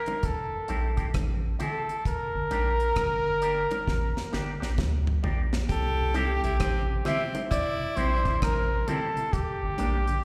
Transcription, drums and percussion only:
0.06 closed hi-hat soft
0.06 high bongo medium
0.23 kick loud
0.23 closed hi-hat medium
0.68 closed hi-hat medium
0.68 high bongo medium
0.97 kick medium
0.97 closed hi-hat soft
1.14 kick loud
1.14 cross-stick medium
1.14 closed hi-hat medium
1.14 high bongo medium
1.60 closed hi-hat medium
1.60 low bongo medium
1.89 closed hi-hat soft
2.05 kick loud
2.05 closed hi-hat medium
2.51 closed hi-hat medium
2.51 high bongo medium
2.80 closed hi-hat medium
2.96 kick medium
2.96 cross-stick loud
2.96 closed hi-hat medium
2.96 high bongo medium
3.42 closed hi-hat medium
3.71 closed hi-hat soft
3.71 high bongo medium
3.88 kick loud
3.88 snare soft
4.17 snare medium
4.33 snare medium
4.33 high bongo soft
4.62 snare medium
4.78 kick loud
4.78 snare medium
4.78 high bongo medium
5.07 mid tom medium
5.24 floor tom loud
5.24 low bongo medium
5.53 snare medium
5.69 kick loud
5.69 closed hi-hat medium
6.14 closed hi-hat medium
6.14 high bongo medium
6.44 closed hi-hat medium
6.60 kick medium
6.60 cross-stick loud
6.60 closed hi-hat medium
6.60 high bongo medium
7.05 cross-stick medium
7.05 closed hi-hat medium
7.05 low bongo medium
7.35 closed hi-hat soft
7.35 high bongo medium
7.51 kick loud
7.51 closed hi-hat loud
7.97 closed hi-hat medium
7.97 high bongo medium
8.25 kick medium
8.25 closed hi-hat soft
8.42 kick loud
8.42 cross-stick loud
8.42 closed hi-hat medium
8.42 high bongo medium
8.88 closed hi-hat medium
8.88 low bongo medium
9.17 closed hi-hat medium
9.33 kick loud
9.33 closed hi-hat medium
9.78 closed hi-hat medium
9.78 high bongo medium
10.07 closed hi-hat medium

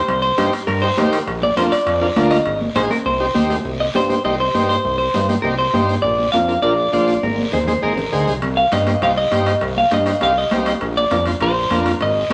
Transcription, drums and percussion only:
0.08 high conga soft
0.08 high timbale medium
0.08 long guiro medium
0.38 high conga medium
0.38 high timbale medium
0.38 short guiro medium
0.53 high timbale medium
0.53 short guiro medium
0.68 high conga soft
0.68 high timbale medium
0.68 long guiro medium
0.98 high conga medium
0.98 high timbale medium
0.98 low timbale medium
0.98 short guiro medium
1.13 high timbale medium
1.13 short guiro medium
1.27 high conga soft
1.27 high timbale medium
1.27 long guiro medium
1.42 high conga medium
1.57 high conga medium
1.57 high timbale medium
1.57 short guiro medium
1.72 high timbale medium
1.72 short guiro medium
1.87 high conga soft
1.87 high timbale medium
1.87 long guiro medium
2.16 high conga medium
2.16 high timbale medium
2.16 low timbale medium
2.16 short guiro medium
2.31 high timbale medium
2.31 short guiro medium
2.46 high conga soft
2.46 high timbale medium
2.46 long guiro medium
2.61 high conga medium
2.76 high conga medium
2.76 high timbale medium
2.76 short guiro medium
2.90 high conga medium
2.90 high timbale medium
2.90 short guiro medium
3.05 high conga soft
3.05 long guiro medium
3.35 high conga medium
3.35 short guiro medium
3.50 low timbale medium
3.50 short guiro medium
3.65 long guiro medium
3.95 high conga medium
3.95 short guiro medium
4.10 high conga medium
4.10 short guiro medium
4.25 high conga soft
4.25 long guiro medium
4.55 high conga medium
4.55 short guiro medium
4.70 short guiro medium
4.85 high conga soft
4.85 long guiro medium
5.14 high conga medium
5.14 short guiro medium
5.29 high conga medium
5.29 short guiro medium
5.44 high conga soft
5.44 long guiro medium
5.74 high conga medium
5.74 short guiro medium
5.89 short guiro medium
6.04 high conga soft
6.04 long guiro medium
6.19 high conga medium
6.34 high conga medium
6.34 short guiro medium
6.48 short guiro medium
6.64 high conga soft
6.64 long guiro medium
6.93 high conga medium
6.93 short guiro medium
7.08 short guiro medium
7.23 high conga medium
7.23 long guiro medium
7.38 high conga medium
7.53 low conga medium
7.53 short guiro medium
7.68 high conga medium
7.68 short guiro medium
7.82 low conga medium
7.82 long guiro medium
7.98 low conga medium
8.13 short guiro medium
8.27 low conga medium
8.27 short guiro medium
8.42 high conga soft
8.42 high timbale medium
8.42 long guiro medium
8.72 high conga medium
8.72 high timbale medium
8.72 short guiro medium
8.87 high conga medium
8.87 high timbale medium
8.87 short guiro medium
9.02 high conga soft
9.02 high timbale medium
9.02 long guiro medium
9.32 high conga medium
9.32 high timbale medium
9.32 short guiro medium
9.46 high timbale medium
9.46 short guiro medium
9.61 high conga soft
9.61 high timbale medium
9.61 long guiro medium
9.77 high conga medium
9.91 high conga medium
9.91 high timbale medium
9.91 short guiro medium
10.06 high timbale medium
10.06 short guiro medium
10.21 high conga soft
10.21 high timbale medium
10.21 long guiro medium
10.51 high conga medium
10.51 high timbale medium
10.51 low timbale medium
10.51 short guiro medium
10.66 high timbale medium
10.66 short guiro medium
10.81 high conga soft
10.81 high timbale medium
10.81 long guiro medium
10.97 high conga medium
11.11 high conga medium
11.11 high timbale medium
11.11 short guiro medium
11.26 high conga medium
11.26 high timbale medium
11.26 short guiro medium
11.41 high conga soft
11.41 high timbale medium
11.41 long guiro medium
11.71 high conga medium
11.71 high timbale medium
11.71 short guiro medium
11.86 high timbale medium
11.86 short guiro medium
12.01 high timbale medium
12.01 long guiro medium

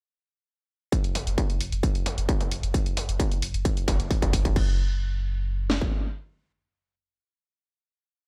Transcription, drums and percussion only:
0.92 kick loud
0.92 closed hi-hat loud
1.04 closed hi-hat medium
1.15 open hi-hat loud
1.15 mid tom medium
1.27 closed hi-hat medium
1.38 kick loud
1.38 closed hi-hat loud
1.50 closed hi-hat medium
1.61 open hi-hat loud
1.72 closed hi-hat medium
1.83 kick loud
1.83 closed hi-hat medium
1.95 closed hi-hat medium
2.06 open hi-hat loud
2.06 mid tom medium
2.18 closed hi-hat medium
2.29 kick loud
2.29 closed hi-hat medium
2.41 closed hi-hat medium
2.41 mid tom medium
2.51 open hi-hat loud
2.63 closed hi-hat medium
2.74 kick loud
2.74 closed hi-hat loud
2.86 closed hi-hat medium
2.97 open hi-hat loud
2.97 mid tom medium
3.09 closed hi-hat medium
3.20 kick loud
3.20 closed hi-hat loud
3.32 closed hi-hat medium
3.42 open hi-hat loud
3.54 closed hi-hat medium
3.65 kick loud
3.65 closed hi-hat medium
3.77 closed hi-hat medium
3.88 kick loud
3.88 open hi-hat loud
3.88 mid tom medium
4.00 closed hi-hat medium
4.11 kick loud
4.11 open hi-hat medium
4.22 kick loud
4.22 closed hi-hat medium
4.22 mid tom medium
4.33 kick loud
4.33 open hi-hat loud
4.45 kick medium
4.45 closed hi-hat medium
4.56 kick loud
4.56 crash medium
5.70 snare medium
5.82 kick medium

